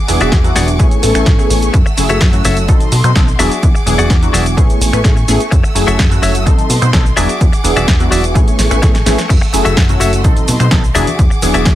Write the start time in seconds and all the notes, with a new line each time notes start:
Already playing: G#4 F#5 D6
0.08 E1 F#3 B3 D4 E4 G#4, muted clean electric guitar stroke, open hi-hat, shaker
0.21 E1 F#4 G#4 D5 E5, closed hi-hat, shaker
0.32 E2, kick, snare, closed hi-hat, shaker
0.44 F#3 B3 D4 E4 F#4, closed hi-hat, shaker
0.56 E1 F#4 G#4 D5 F#5, snare, open hi-hat, shaker
0.68 closed hi-hat, shaker
0.79 A2 A3 B3 C#4 E4 G#4 G#5 C#6, muted clean electric guitar stroke, kick, closed hi-hat, shaker
0.91 A1, closed hi-hat, shaker
1.02 A1 A3 B3 C#4 E4 A4, open hi-hat, shaker
1.14 A1 A3 B3 C#4 E4 A4, finger snap, muted clean electric guitar stroke, closed hi-hat, shaker
1.26 A2, muted clean electric guitar stroke, kick, snare, closed hi-hat, shaker
1.38 A3 B3 C#4 E4 G#4, muted clean electric guitar stroke, shaker
1.50 A1, open hi-hat, shaker
1.62 closed hi-hat, shaker
1.74 F#2 F#5 E6, muted clean electric guitar stroke, kick, closed hi-hat, shaker
1.86 muted clean electric guitar stroke, shaker
1.97 F#1 F#3 A3 C#4 E4 G#4, muted clean electric guitar stroke, open hi-hat, shaker
2.09 F#1 F#4 A4 C#5 E5, closed hi-hat, shaker
2.21 F#2, kick, snare, closed hi-hat, shaker
2.33 F#3 A3 C#4 E4 F#4, closed hi-hat, shaker
2.45 F#1 F#4 A4 C#5 E5, open hi-hat, shaker
2.57 closed hi-hat, shaker
2.68 B1 F#3 C4 D#4 A4 D#5 C6, muted clean electric guitar stroke, kick, closed hi-hat, shaker
2.80 B2, closed hi-hat, shaker
2.92 B2, open hi-hat, shaker
3.04 B2 F#3 B3 C4 D#4 C5, finger snap, muted clean electric guitar stroke, closed hi-hat, shaker
3.16 B1 F#3 B3 C4 D#4 A4, muted clean electric guitar stroke, kick, snare, closed hi-hat, shaker
3.27 muted clean electric guitar stroke, shaker
3.39 E1 F#3 B3 D4 E4 F#4 G#4 D5 E5 F#5 D6, open hi-hat, shaker
3.52 closed hi-hat, shaker
3.63 E2, kick, closed hi-hat, shaker
3.75 E1, muted clean electric guitar stroke, shaker
3.86 E1 F#3 B3 D4 E4 G#4, muted clean electric guitar stroke, open hi-hat, shaker
3.98 E1 F#4 G#4 D5 F#5, closed hi-hat, shaker
4.10 E2, kick, snare, closed hi-hat, shaker
4.22 F#3 B3 D4 E4 F#4, closed hi-hat, shaker
4.33 E1 F#4 G#4 D5 E5, snare, open hi-hat, shaker
4.46 closed hi-hat, shaker
4.57 A2 A3 B3 C#4 E4 G#4 G#5 C#6, muted clean electric guitar stroke, kick, closed hi-hat, shaker
4.69 A1, closed hi-hat, shaker
4.81 A1, open hi-hat, shaker
4.93 A1 A3 B3 C#4 E4 B4, finger snap, muted clean electric guitar stroke, closed hi-hat, shaker
5.04 A2 A3 B3 C#4 E4 G#4, muted clean electric guitar stroke, kick, snare, closed hi-hat, shaker
5.16 muted clean electric guitar stroke, shaker
5.28 A1 A3 B3 C#4 E4 G#4, open hi-hat, shaker
5.40 closed hi-hat, shaker
5.51 F#2 F#5 E6, muted clean electric guitar stroke, kick, closed hi-hat, shaker
5.64 muted clean electric guitar stroke, shaker
5.75 F#1 F#3 A3 C#4 E4 G#4, muted clean electric guitar stroke, open hi-hat, shaker
5.87 F#1 F#4 A4 C#5 E5, closed hi-hat, shaker
5.99 F#2, kick, snare, closed hi-hat, shaker
6.11 F#3 A3 C#4 E4 F#4, closed hi-hat, shaker
6.22 F#1 F#4 A4 C#5 E5, open hi-hat, shaker
6.35 closed hi-hat, shaker
6.46 B1 F#3 C4 D#4 A4 D#5 C6, muted clean electric guitar stroke, kick, closed hi-hat, shaker
6.58 B2, closed hi-hat, shaker
6.70 B2, open hi-hat, shaker
6.81 B2 F#3 B3 C4 D#4 C5, finger snap, muted clean electric guitar stroke, closed hi-hat, shaker
6.93 B1 F#3 B3 C4 D#4 A4, muted clean electric guitar stroke, kick, snare, closed hi-hat, shaker
7.05 muted clean electric guitar stroke, shaker
7.17 E1 F#3 B3 D4 E4 F#4 G#4 D5 E5 F#5 D6, open hi-hat, shaker
7.29 closed hi-hat, shaker
7.41 E2, kick, closed hi-hat, shaker
7.52 E1, muted clean electric guitar stroke, closed hi-hat, shaker
7.64 E1 F#3 B3 D4 E4 G#4, muted clean electric guitar stroke, open hi-hat, shaker
7.76 E1 F#4 G#4 D5 E5, finger snap, closed hi-hat, shaker
7.88 E2, kick, snare, closed hi-hat, shaker
8.00 F#3 B3 D4 E4 F#4, closed hi-hat, shaker
8.11 E1 F#4 G#4 D5 E5, open hi-hat, shaker
8.24 closed hi-hat, shaker
8.34 A2 A3 B3 C#4 E4 G#4 G#5 C#6, muted clean electric guitar stroke, kick, closed hi-hat, shaker
8.48 A1, closed hi-hat, shaker
8.59 A1, snare, open hi-hat, shaker
8.71 A1 A3 B3 C#4 E4 B4, finger snap, muted clean electric guitar stroke, closed hi-hat, shaker
8.82 A2 A3 B3 C#4 E4 G#4, muted clean electric guitar stroke, kick, snare, closed hi-hat, shaker
8.94 muted clean electric guitar stroke, snare, closed hi-hat, shaker
9.06 A1 A3 B3 C#4 E4 G#4, snare, open hi-hat, shaker
9.18 snare, closed hi-hat, shaker
9.29 F#2 F#5 E6, muted clean electric guitar stroke, kick, closed hi-hat, crash, shaker
9.41 muted clean electric guitar stroke, shaker
9.53 F#1 F#3 A3 C#4 E4 G#4, muted clean electric guitar stroke, open hi-hat, shaker
9.65 F#1 F#4 A4 C#5 E5, closed hi-hat, shaker
9.77 F#2, kick, snare, closed hi-hat, shaker
9.89 F#3 A3 C#4 E4 F#4, closed hi-hat, low conga, shaker
10.00 F#1 F#4 A4 C#5 E5, open hi-hat, shaker
10.13 closed hi-hat, shaker
10.24 B1 F#3 C4 D#4 A4 D#5 C6, muted clean electric guitar stroke, kick, closed hi-hat, shaker
10.37 closed hi-hat, high conga, shaker
10.48 B2, open hi-hat, low conga, shaker
10.60 B2 F#3 B3 C4 D#4 C5, finger snap, muted clean electric guitar stroke, closed hi-hat, shaker
10.71 B1 F#3 B3 C4 D#4 A4, muted clean electric guitar stroke, kick, snare, closed hi-hat, shaker
10.83 muted clean electric guitar stroke, shaker
10.95 E1 F#3 B3 D4 E4 F#4 G#4 D5 E5 F#5 D6, open hi-hat, low conga, shaker
11.07 closed hi-hat, high conga, shaker
11.19 E2, kick, closed hi-hat, shaker
11.30 E1, muted clean electric guitar stroke, shaker
11.42 E1 F#3 B3 D4 E4 G#4, muted clean electric guitar stroke, open hi-hat, high conga, shaker
11.54 E1 F#4 G#4 D5 E5, closed hi-hat, shaker
11.65 E2, kick, snare, closed hi-hat, shaker